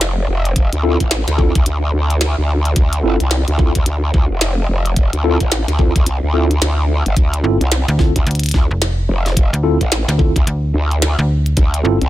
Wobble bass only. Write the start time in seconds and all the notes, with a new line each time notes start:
Already playing: F1
0.28 F1
0.73 D2
1.00 A1
1.27 D2
1.55 D2
1.66 D2
1.93 D2
2.38 D2
2.76 D2
3.04 G1
3.20 C2
3.48 D2
3.76 D2
3.86 D2
4.14 D2
4.30 F1
4.69 F1
5.13 D2
5.41 A1
5.68 D2
5.96 D2
6.06 C2
6.23 D2
6.61 D2
7.06 G1
7.17 D2
7.61 C2
8.16 D2
8.54 D2
9.09 F1
9.81 A1
10.36 D2
10.74 D2
11.57 D2
12.01 C2